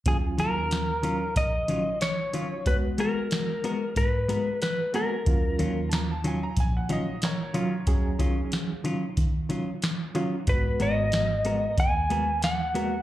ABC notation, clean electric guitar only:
X:1
M:4/4
L:1/8
Q:1/4=92
K:Ebm
V:1 name="Clean electric guitar"
z [E,G,DF] z [E,G,DF] z [E,G,DF] z [E,G,DF] | z [A,CGB] z [A,CGB] z [A,CGB] z [A,CGB] | z [E,G,DF] z [E,G,DF] z [E,G,DF] z [E,G,DF] | z [E,G,DF] z [E,G,DF] z [E,G,DF] z [E,G,DF] |
z [A,CGB] z [A,CGB] z [A,CGB] z [A,CGB] |]